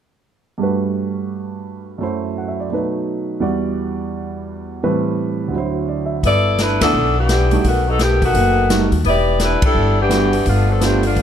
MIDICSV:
0, 0, Header, 1, 6, 480
1, 0, Start_track
1, 0, Key_signature, 1, "major"
1, 0, Tempo, 352113
1, 819, Time_signature, 4, 2, 24, 8
1, 15295, End_track
2, 0, Start_track
2, 0, Title_t, "Saxophone section"
2, 0, Program_c, 0, 65
2, 8521, Note_on_c, 0, 69, 89
2, 8524, Note_on_c, 0, 59, 81
2, 8525, Note_on_c, 0, 74, 102
2, 8526, Note_on_c, 0, 64, 83
2, 8957, Note_off_c, 0, 69, 0
2, 8959, Note_off_c, 0, 59, 0
2, 8959, Note_off_c, 0, 64, 0
2, 8959, Note_off_c, 0, 74, 0
2, 8995, Note_on_c, 0, 71, 90
2, 8997, Note_on_c, 0, 62, 80
2, 9000, Note_on_c, 0, 57, 78
2, 9000, Note_on_c, 0, 64, 73
2, 9277, Note_off_c, 0, 62, 0
2, 9288, Note_on_c, 0, 69, 101
2, 9290, Note_off_c, 0, 71, 0
2, 9291, Note_on_c, 0, 59, 80
2, 9293, Note_off_c, 0, 57, 0
2, 9293, Note_off_c, 0, 64, 0
2, 9293, Note_on_c, 0, 62, 80
2, 9301, Note_on_c, 0, 52, 80
2, 9732, Note_off_c, 0, 69, 0
2, 9734, Note_off_c, 0, 59, 0
2, 9734, Note_off_c, 0, 62, 0
2, 9739, Note_off_c, 0, 52, 0
2, 9790, Note_on_c, 0, 52, 76
2, 9791, Note_on_c, 0, 59, 77
2, 9791, Note_on_c, 0, 67, 87
2, 9797, Note_on_c, 0, 62, 77
2, 10388, Note_off_c, 0, 52, 0
2, 10388, Note_off_c, 0, 59, 0
2, 10388, Note_off_c, 0, 67, 0
2, 10392, Note_off_c, 0, 62, 0
2, 10446, Note_on_c, 0, 66, 89
2, 10449, Note_on_c, 0, 59, 74
2, 10452, Note_on_c, 0, 51, 72
2, 10454, Note_on_c, 0, 57, 75
2, 10716, Note_off_c, 0, 66, 0
2, 10718, Note_off_c, 0, 59, 0
2, 10719, Note_off_c, 0, 51, 0
2, 10720, Note_off_c, 0, 57, 0
2, 10727, Note_on_c, 0, 54, 73
2, 10737, Note_on_c, 0, 59, 68
2, 10739, Note_on_c, 0, 63, 78
2, 10742, Note_on_c, 0, 69, 82
2, 10901, Note_off_c, 0, 54, 0
2, 10906, Note_off_c, 0, 59, 0
2, 10907, Note_off_c, 0, 63, 0
2, 10909, Note_off_c, 0, 69, 0
2, 10916, Note_on_c, 0, 67, 82
2, 10920, Note_on_c, 0, 57, 71
2, 10926, Note_on_c, 0, 51, 71
2, 10927, Note_on_c, 0, 59, 67
2, 11205, Note_off_c, 0, 59, 0
2, 11211, Note_off_c, 0, 67, 0
2, 11214, Note_off_c, 0, 57, 0
2, 11217, Note_off_c, 0, 51, 0
2, 11221, Note_on_c, 0, 59, 75
2, 11222, Note_on_c, 0, 66, 97
2, 11227, Note_on_c, 0, 57, 81
2, 11232, Note_on_c, 0, 51, 78
2, 12118, Note_off_c, 0, 59, 0
2, 12119, Note_off_c, 0, 66, 0
2, 12121, Note_off_c, 0, 57, 0
2, 12124, Note_off_c, 0, 51, 0
2, 12342, Note_on_c, 0, 67, 79
2, 12343, Note_on_c, 0, 59, 84
2, 12352, Note_on_c, 0, 64, 86
2, 12357, Note_on_c, 0, 74, 90
2, 12788, Note_off_c, 0, 67, 0
2, 12789, Note_off_c, 0, 59, 0
2, 12793, Note_off_c, 0, 64, 0
2, 12796, Note_off_c, 0, 74, 0
2, 12837, Note_on_c, 0, 55, 76
2, 12838, Note_on_c, 0, 62, 73
2, 12840, Note_on_c, 0, 71, 82
2, 12846, Note_on_c, 0, 64, 71
2, 13112, Note_off_c, 0, 55, 0
2, 13112, Note_off_c, 0, 62, 0
2, 13114, Note_off_c, 0, 71, 0
2, 13117, Note_off_c, 0, 64, 0
2, 13136, Note_on_c, 0, 64, 82
2, 13142, Note_on_c, 0, 62, 83
2, 13145, Note_on_c, 0, 55, 80
2, 13145, Note_on_c, 0, 69, 91
2, 13578, Note_off_c, 0, 64, 0
2, 13581, Note_off_c, 0, 62, 0
2, 13582, Note_off_c, 0, 55, 0
2, 13583, Note_off_c, 0, 69, 0
2, 13626, Note_on_c, 0, 59, 75
2, 13631, Note_on_c, 0, 67, 85
2, 13632, Note_on_c, 0, 52, 77
2, 13639, Note_on_c, 0, 62, 76
2, 14227, Note_off_c, 0, 59, 0
2, 14230, Note_off_c, 0, 52, 0
2, 14230, Note_off_c, 0, 67, 0
2, 14234, Note_off_c, 0, 62, 0
2, 14272, Note_on_c, 0, 62, 74
2, 14278, Note_on_c, 0, 59, 74
2, 14278, Note_on_c, 0, 65, 82
2, 14287, Note_on_c, 0, 57, 70
2, 14566, Note_off_c, 0, 62, 0
2, 14574, Note_off_c, 0, 59, 0
2, 14574, Note_off_c, 0, 65, 0
2, 14579, Note_off_c, 0, 57, 0
2, 14582, Note_on_c, 0, 62, 65
2, 14584, Note_on_c, 0, 69, 78
2, 14590, Note_on_c, 0, 53, 64
2, 14591, Note_on_c, 0, 59, 64
2, 14750, Note_off_c, 0, 62, 0
2, 14751, Note_off_c, 0, 69, 0
2, 14754, Note_off_c, 0, 53, 0
2, 14755, Note_off_c, 0, 59, 0
2, 14774, Note_on_c, 0, 59, 69
2, 14774, Note_on_c, 0, 62, 65
2, 14776, Note_on_c, 0, 53, 64
2, 14777, Note_on_c, 0, 67, 78
2, 15042, Note_off_c, 0, 59, 0
2, 15042, Note_off_c, 0, 62, 0
2, 15043, Note_off_c, 0, 53, 0
2, 15044, Note_off_c, 0, 67, 0
2, 15060, Note_on_c, 0, 65, 75
2, 15066, Note_on_c, 0, 57, 63
2, 15072, Note_on_c, 0, 62, 69
2, 15078, Note_on_c, 0, 59, 65
2, 15295, Note_off_c, 0, 57, 0
2, 15295, Note_off_c, 0, 59, 0
2, 15295, Note_off_c, 0, 62, 0
2, 15295, Note_off_c, 0, 65, 0
2, 15295, End_track
3, 0, Start_track
3, 0, Title_t, "Grand piano"
3, 0, Program_c, 1, 0
3, 788, Note_on_c, 1, 43, 45
3, 809, Note_on_c, 1, 55, 38
3, 825, Note_on_c, 1, 57, 37
3, 838, Note_on_c, 1, 66, 38
3, 861, Note_on_c, 1, 71, 47
3, 2703, Note_on_c, 1, 42, 44
3, 2715, Note_off_c, 1, 57, 0
3, 2720, Note_on_c, 1, 54, 42
3, 2724, Note_off_c, 1, 43, 0
3, 2734, Note_off_c, 1, 55, 0
3, 2735, Note_on_c, 1, 57, 43
3, 2748, Note_off_c, 1, 66, 0
3, 2749, Note_on_c, 1, 64, 41
3, 2760, Note_off_c, 1, 71, 0
3, 2768, Note_on_c, 1, 72, 49
3, 3243, Note_on_c, 1, 78, 38
3, 3382, Note_on_c, 1, 76, 38
3, 3514, Note_off_c, 1, 78, 0
3, 3548, Note_on_c, 1, 74, 40
3, 3624, Note_off_c, 1, 76, 0
3, 3661, Note_off_c, 1, 54, 0
3, 3670, Note_on_c, 1, 47, 37
3, 3681, Note_off_c, 1, 42, 0
3, 3682, Note_on_c, 1, 54, 38
3, 3690, Note_off_c, 1, 57, 0
3, 3704, Note_off_c, 1, 64, 0
3, 3710, Note_on_c, 1, 57, 40
3, 3713, Note_off_c, 1, 72, 0
3, 3720, Note_on_c, 1, 63, 34
3, 3737, Note_on_c, 1, 71, 46
3, 3787, Note_off_c, 1, 74, 0
3, 4633, Note_on_c, 1, 40, 53
3, 4642, Note_on_c, 1, 52, 47
3, 4644, Note_off_c, 1, 47, 0
3, 4648, Note_on_c, 1, 55, 49
3, 4650, Note_off_c, 1, 54, 0
3, 4660, Note_on_c, 1, 66, 45
3, 4663, Note_on_c, 1, 74, 54
3, 4664, Note_off_c, 1, 57, 0
3, 4669, Note_off_c, 1, 63, 0
3, 4678, Note_off_c, 1, 71, 0
3, 6565, Note_off_c, 1, 40, 0
3, 6569, Note_off_c, 1, 52, 0
3, 6573, Note_off_c, 1, 55, 0
3, 6579, Note_off_c, 1, 66, 0
3, 6580, Note_off_c, 1, 74, 0
3, 6590, Note_on_c, 1, 52, 45
3, 6592, Note_on_c, 1, 45, 53
3, 6596, Note_on_c, 1, 71, 61
3, 6597, Note_on_c, 1, 55, 51
3, 6600, Note_on_c, 1, 60, 50
3, 7470, Note_on_c, 1, 38, 48
3, 7506, Note_on_c, 1, 50, 43
3, 7544, Note_off_c, 1, 52, 0
3, 7545, Note_off_c, 1, 45, 0
3, 7545, Note_on_c, 1, 54, 47
3, 7547, Note_off_c, 1, 55, 0
3, 7547, Note_off_c, 1, 71, 0
3, 7549, Note_off_c, 1, 60, 0
3, 7575, Note_on_c, 1, 64, 42
3, 7604, Note_on_c, 1, 72, 49
3, 8024, Note_on_c, 1, 74, 41
3, 8257, Note_on_c, 1, 76, 40
3, 8386, Note_off_c, 1, 74, 0
3, 8464, Note_off_c, 1, 38, 0
3, 8482, Note_off_c, 1, 50, 0
3, 8501, Note_off_c, 1, 54, 0
3, 8517, Note_off_c, 1, 64, 0
3, 8531, Note_off_c, 1, 72, 0
3, 8592, Note_off_c, 1, 76, 0
3, 9284, Note_on_c, 1, 59, 47
3, 9287, Note_on_c, 1, 57, 52
3, 9291, Note_on_c, 1, 62, 49
3, 9293, Note_on_c, 1, 64, 55
3, 9442, Note_off_c, 1, 59, 0
3, 9443, Note_off_c, 1, 57, 0
3, 9445, Note_off_c, 1, 62, 0
3, 9446, Note_off_c, 1, 64, 0
3, 10251, Note_on_c, 1, 55, 49
3, 10253, Note_on_c, 1, 57, 47
3, 10262, Note_on_c, 1, 63, 46
3, 10268, Note_on_c, 1, 66, 54
3, 10405, Note_off_c, 1, 55, 0
3, 10406, Note_off_c, 1, 57, 0
3, 10411, Note_off_c, 1, 63, 0
3, 10414, Note_off_c, 1, 66, 0
3, 11856, Note_on_c, 1, 55, 52
3, 11862, Note_on_c, 1, 63, 48
3, 11867, Note_on_c, 1, 66, 62
3, 11868, Note_on_c, 1, 57, 53
3, 12132, Note_off_c, 1, 55, 0
3, 12134, Note_off_c, 1, 63, 0
3, 12137, Note_off_c, 1, 66, 0
3, 12138, Note_off_c, 1, 57, 0
3, 13755, Note_on_c, 1, 55, 56
3, 13761, Note_on_c, 1, 62, 49
3, 13763, Note_on_c, 1, 59, 54
3, 13769, Note_on_c, 1, 66, 62
3, 14041, Note_off_c, 1, 55, 0
3, 14045, Note_off_c, 1, 62, 0
3, 14046, Note_off_c, 1, 59, 0
3, 14049, Note_off_c, 1, 66, 0
3, 14732, Note_on_c, 1, 59, 48
3, 14733, Note_on_c, 1, 65, 58
3, 14734, Note_on_c, 1, 57, 59
3, 14735, Note_on_c, 1, 62, 47
3, 15010, Note_off_c, 1, 59, 0
3, 15011, Note_off_c, 1, 65, 0
3, 15012, Note_off_c, 1, 57, 0
3, 15012, Note_off_c, 1, 62, 0
3, 15295, End_track
4, 0, Start_track
4, 0, Title_t, "Upright bass"
4, 0, Program_c, 2, 32
4, 8496, Note_on_c, 2, 31, 75
4, 9227, Note_off_c, 2, 31, 0
4, 9282, Note_on_c, 2, 38, 63
4, 9446, Note_off_c, 2, 38, 0
4, 9452, Note_on_c, 2, 35, 79
4, 10367, Note_off_c, 2, 35, 0
4, 10416, Note_on_c, 2, 35, 72
4, 11330, Note_off_c, 2, 35, 0
4, 11372, Note_on_c, 2, 30, 76
4, 12106, Note_off_c, 2, 30, 0
4, 12160, Note_on_c, 2, 39, 63
4, 12319, Note_off_c, 2, 39, 0
4, 12327, Note_on_c, 2, 28, 78
4, 13063, Note_off_c, 2, 28, 0
4, 13288, Note_on_c, 2, 31, 79
4, 14207, Note_off_c, 2, 31, 0
4, 14253, Note_on_c, 2, 31, 77
4, 15170, Note_off_c, 2, 31, 0
4, 15216, Note_on_c, 2, 38, 79
4, 15295, Note_off_c, 2, 38, 0
4, 15295, End_track
5, 0, Start_track
5, 0, Title_t, "Muted upright bass strokes"
5, 13112, Note_on_c, 9, 29, 34
5, 13249, Note_off_c, 9, 29, 0
5, 15295, End_track
6, 0, Start_track
6, 0, Title_t, "Drums"
6, 8498, Note_on_c, 9, 36, 32
6, 8500, Note_on_c, 9, 46, 41
6, 8634, Note_off_c, 9, 36, 0
6, 8636, Note_off_c, 9, 46, 0
6, 8978, Note_on_c, 9, 38, 55
6, 8978, Note_on_c, 9, 42, 43
6, 9114, Note_off_c, 9, 38, 0
6, 9114, Note_off_c, 9, 42, 0
6, 9288, Note_on_c, 9, 38, 73
6, 9288, Note_on_c, 9, 51, 63
6, 9424, Note_off_c, 9, 38, 0
6, 9424, Note_off_c, 9, 51, 0
6, 9939, Note_on_c, 9, 38, 61
6, 9939, Note_on_c, 9, 42, 52
6, 10075, Note_off_c, 9, 38, 0
6, 10075, Note_off_c, 9, 42, 0
6, 10240, Note_on_c, 9, 46, 34
6, 10377, Note_off_c, 9, 46, 0
6, 10421, Note_on_c, 9, 36, 32
6, 10422, Note_on_c, 9, 46, 41
6, 10557, Note_off_c, 9, 36, 0
6, 10558, Note_off_c, 9, 46, 0
6, 10897, Note_on_c, 9, 38, 59
6, 10897, Note_on_c, 9, 42, 46
6, 11033, Note_off_c, 9, 38, 0
6, 11033, Note_off_c, 9, 42, 0
6, 11203, Note_on_c, 9, 36, 46
6, 11206, Note_on_c, 9, 46, 39
6, 11340, Note_off_c, 9, 36, 0
6, 11342, Note_off_c, 9, 46, 0
6, 11378, Note_on_c, 9, 36, 32
6, 11378, Note_on_c, 9, 46, 42
6, 11514, Note_off_c, 9, 36, 0
6, 11515, Note_off_c, 9, 46, 0
6, 11862, Note_on_c, 9, 38, 65
6, 11862, Note_on_c, 9, 42, 52
6, 11999, Note_off_c, 9, 38, 0
6, 11999, Note_off_c, 9, 42, 0
6, 12161, Note_on_c, 9, 46, 34
6, 12297, Note_off_c, 9, 46, 0
6, 12331, Note_on_c, 9, 46, 40
6, 12334, Note_on_c, 9, 36, 31
6, 12467, Note_off_c, 9, 46, 0
6, 12471, Note_off_c, 9, 36, 0
6, 12810, Note_on_c, 9, 38, 55
6, 12810, Note_on_c, 9, 42, 46
6, 12946, Note_off_c, 9, 38, 0
6, 12946, Note_off_c, 9, 42, 0
6, 13115, Note_on_c, 9, 51, 67
6, 13117, Note_on_c, 9, 36, 75
6, 13251, Note_off_c, 9, 51, 0
6, 13254, Note_off_c, 9, 36, 0
6, 13778, Note_on_c, 9, 38, 64
6, 13778, Note_on_c, 9, 42, 54
6, 13915, Note_off_c, 9, 38, 0
6, 13915, Note_off_c, 9, 42, 0
6, 14082, Note_on_c, 9, 46, 38
6, 14218, Note_off_c, 9, 46, 0
6, 14256, Note_on_c, 9, 46, 44
6, 14257, Note_on_c, 9, 36, 30
6, 14393, Note_off_c, 9, 46, 0
6, 14394, Note_off_c, 9, 36, 0
6, 14743, Note_on_c, 9, 38, 61
6, 14743, Note_on_c, 9, 42, 49
6, 14879, Note_off_c, 9, 38, 0
6, 14879, Note_off_c, 9, 42, 0
6, 15038, Note_on_c, 9, 46, 36
6, 15174, Note_off_c, 9, 46, 0
6, 15219, Note_on_c, 9, 46, 41
6, 15221, Note_on_c, 9, 36, 30
6, 15295, Note_off_c, 9, 36, 0
6, 15295, Note_off_c, 9, 46, 0
6, 15295, End_track
0, 0, End_of_file